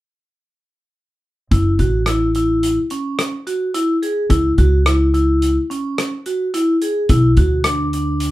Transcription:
1.51 1.76 F#1 medium
1.51 1.72 E4 medium
1.51 kick medium
1.51 closed hi-hat medium
1.79 2.77 A1 medium
1.79 2.00 F#4 medium
1.79 kick medium
1.79 closed hi-hat soft
2.06 2.28 E4 medium
2.06 cross-stick medium
2.06 closed hi-hat medium
2.35 2.77 E4 medium
2.35 closed hi-hat medium
2.63 closed hi-hat medium
2.90 3.32 C#4 medium
2.90 closed hi-hat soft
3.19 cross-stick medium
3.19 closed hi-hat medium
3.47 3.67 F#4 medium
3.47 closed hi-hat medium
3.74 3.95 E4 medium
3.74 closed hi-hat medium
4.02 4.23 G#4 medium
4.02 closed hi-hat soft
4.30 4.55 C#2 medium
4.30 4.51 E4 medium
4.30 kick medium
4.30 closed hi-hat medium
4.58 5.56 C#2 medium
4.58 4.79 F#4 medium
4.58 kick medium
4.58 closed hi-hat soft
4.86 5.07 E4 medium
4.86 cross-stick medium
4.86 closed hi-hat medium
5.14 5.55 E4 medium
5.14 closed hi-hat soft
5.42 closed hi-hat medium
5.70 6.11 C#4 medium
5.70 closed hi-hat soft
5.98 cross-stick medium
5.98 closed hi-hat medium
6.26 6.47 F#4 medium
6.26 closed hi-hat soft
6.54 6.74 E4 medium
6.54 closed hi-hat medium
6.82 7.02 G#4 medium
6.82 closed hi-hat soft
7.09 7.34 B1 medium
7.09 7.30 E4 medium
7.09 kick medium
7.09 closed hi-hat medium
7.37 8.31 D2 medium
7.37 7.58 F#4 medium
7.37 kick medium
7.37 closed hi-hat soft
7.64 7.87 D4 medium
7.64 cross-stick medium
7.64 closed hi-hat medium
7.93 8.31 D4 medium
7.93 closed hi-hat medium
8.20 closed hi-hat medium

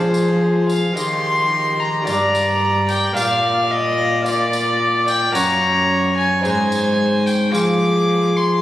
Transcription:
0.00 0.93 F3 medium
0.00 0.96 F3 medium
0.00 0.92 G#3 soft
0.00 0.92 F4 soft
0.00 0.97 G#4 medium
0.00 0.69 C5 medium
0.00 0.93 C5 soft
0.14 tambourine medium
0.69 0.97 F5 medium
0.69 tambourine soft
0.93 2.03 D#3 soft
0.93 2.01 A#3 soft
0.93 2.02 G4 soft
0.93 2.03 D#5 soft
0.97 2.09 D#3 medium
0.97 2.05 G4 medium
0.97 1.81 C6 loud
0.97 tambourine medium
1.80 2.07 A#5 medium
2.03 3.16 G2 medium
2.03 3.11 A#3 soft
2.03 3.12 G4 soft
2.03 3.12 D5 soft
2.03 3.14 D5 medium
2.03 2.87 A#5 medium
2.03 tambourine soft
2.07 3.12 G2 soft
2.35 tambourine medium
2.89 3.15 G5 medium
2.89 tambourine soft
3.13 5.31 A#2 medium
3.13 4.21 A#3 soft
3.13 4.21 F4 medium
3.13 4.23 D5 medium
3.13 4.22 F5 soft
3.13 3.73 F5 medium
3.13 tambourine medium
3.72 4.26 D#5 medium
4.22 5.30 A#3 medium
4.22 5.31 F4 soft
4.22 5.31 D5 medium
4.22 5.37 D5 medium
4.22 tambourine soft
4.26 5.06 D5 medium
4.53 tambourine medium
5.08 5.34 G5 medium
5.08 tambourine soft
5.31 6.41 F#2 medium
5.31 6.46 F#2 medium
5.31 6.40 A#3 soft
5.31 6.40 F#4 soft
5.31 6.41 C#5 medium
5.31 6.44 C#5 medium
5.31 6.16 A#5 medium
5.31 tambourine medium
6.18 6.44 G#5 medium
6.41 7.51 G#2 medium
6.41 7.49 C4 medium
6.41 7.50 D#4 soft
6.41 7.51 G#4 soft
6.41 7.52 C5 medium
6.45 7.54 G#2 medium
6.45 7.28 G#5 medium
6.45 tambourine soft
6.72 tambourine soft
7.26 7.54 G5 medium
7.26 tambourine soft
7.50 8.60 F3 medium
7.50 8.59 C4 soft
7.50 8.60 F4 soft
7.50 8.60 G#4 soft
7.54 8.62 F3 medium
7.54 8.62 G#4 medium
7.54 8.39 D6 loud
7.54 tambourine medium
8.37 8.62 C6 medium

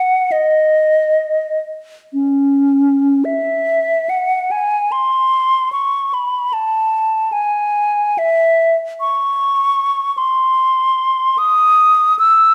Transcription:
0.00 0.33 F#5 medium
0.32 1.60 D#5 soft
2.13 3.26 C#4 soft
3.25 4.11 E5 medium
4.10 4.53 F#5 medium
4.51 4.93 G#5 medium
4.92 5.71 C6 medium
5.73 6.15 C#6 medium
6.14 6.55 B5 soft
6.53 7.34 A5 medium
7.32 8.20 G#5 medium
8.18 8.76 E5 medium
9.00 10.19 C#6 medium
10.18 11.40 C6 medium
11.38 12.18 D#6 medium
12.19 12.54 E6 medium

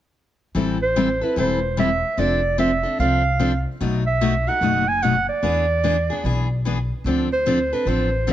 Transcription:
0.55 1.20 A1 medium
0.55 0.77 E3 medium
0.55 0.77 G3 medium
0.55 0.77 C4 medium
0.55 0.77 E4 medium
0.55 0.77 A4 medium
0.82 1.24 C5 medium
0.96 1.07 E3 medium
0.96 1.08 G3 medium
0.96 1.08 C4 medium
0.96 1.08 E4 medium
0.96 1.08 A4 medium
1.21 1.36 C4 soft
1.21 1.36 E4 soft
1.21 1.35 A4 soft
1.21 1.37 B4 medium
1.36 2.01 E1 medium
1.36 1.58 E3 medium
1.36 1.59 G3 medium
1.36 1.59 C4 medium
1.36 1.59 E4 medium
1.36 1.59 A4 medium
1.36 1.76 C5 medium
1.77 1.89 E3 medium
1.77 1.89 G3 medium
1.77 1.89 C4 medium
1.77 1.89 E4 medium
1.77 1.89 A4 medium
1.77 2.21 E5 loud
2.17 2.82 F1 medium
2.17 2.40 F3 medium
2.17 2.40 C4 medium
2.17 2.40 D4 medium
2.17 2.40 A4 medium
2.17 2.59 D5 medium
2.58 2.70 F3 medium
2.58 2.70 C4 medium
2.58 2.70 D4 medium
2.58 2.70 A4 medium
2.58 2.97 E5 medium
2.83 2.99 C4 soft
2.83 2.98 D4 soft
2.83 2.98 A4 medium
2.99 3.64 C2 medium
2.99 3.21 F3 medium
2.99 3.21 C4 medium
2.99 3.22 D4 medium
2.99 3.22 A4 medium
2.99 3.62 F5 medium
3.39 3.51 F3 medium
3.39 3.51 C4 medium
3.39 3.51 D4 medium
3.39 3.52 A4 medium
3.81 4.45 B1 medium
3.81 4.02 B2 medium
3.81 4.02 F#3 medium
3.81 4.03 A3 medium
3.81 4.03 D#4 medium
3.81 4.03 F#4 medium
4.07 4.50 E5 medium
4.21 4.33 B2 medium
4.21 4.33 F#3 medium
4.21 4.33 A3 medium
4.21 4.33 D#4 medium
4.21 4.33 F#4 medium
4.47 4.61 A3 soft
4.47 4.61 D#4 soft
4.47 4.61 F#4 soft
4.47 4.90 F#5 loud
4.61 5.26 F#1 medium
4.61 4.83 B2 medium
4.61 4.84 F#3 medium
4.61 4.84 A3 medium
4.61 4.84 D#4 medium
4.61 4.84 F#4 medium
4.88 5.04 G#5 loud
5.02 5.14 B2 medium
5.02 5.14 F#3 medium
5.02 5.14 A3 medium
5.02 5.15 D#4 medium
5.02 5.15 F#4 medium
5.02 5.28 F#5 loud
5.29 6.46 D5 medium
5.43 6.08 E2 medium
5.43 5.65 E3 medium
5.43 5.65 B3 medium
5.43 5.65 D4 medium
5.43 5.65 G#4 medium
5.84 5.95 E3 medium
5.84 5.95 B3 medium
5.84 5.96 D4 medium
5.84 5.96 G#4 medium
6.10 6.24 B3 soft
6.10 6.24 D4 medium
6.10 6.24 G#4 medium
6.24 6.89 B1 medium
6.24 6.46 E3 medium
6.24 6.47 B3 medium
6.24 6.47 D4 medium
6.24 6.47 G#4 medium
6.65 6.77 E3 medium
6.65 6.77 B3 medium
6.65 6.77 D4 medium
6.65 6.77 G#4 medium
7.04 7.70 D2 medium
7.04 7.27 D3 medium
7.04 7.28 F3 medium
7.04 7.28 C4 medium
7.04 7.28 D4 medium
7.04 7.28 A4 medium
7.33 7.75 C5 medium
7.46 7.58 D3 medium
7.46 7.58 F3 medium
7.46 7.58 C4 medium
7.46 7.58 D4 medium
7.46 7.58 A4 medium
7.73 7.86 C4 soft
7.73 7.87 D4 soft
7.73 7.86 A4 medium
7.73 7.90 B4 medium
7.85 8.33 A1 medium
7.85 8.09 D3 medium
7.85 8.09 F3 medium
7.85 8.09 C4 medium
7.85 8.09 D4 medium
7.85 8.09 A4 medium
7.85 8.28 C5 medium
8.27 8.33 D3 medium
8.27 8.33 F3 medium
8.27 8.33 C4 medium
8.27 8.33 D4 medium
8.27 8.33 A4 medium

